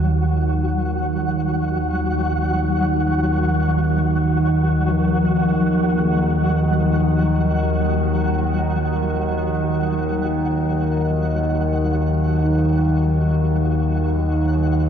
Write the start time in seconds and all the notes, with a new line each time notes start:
Already playing: D#2 D#3 F#3 F#5
4.89 F3
5.98 D#3
12.44 D#4
13.73 F#3 F#5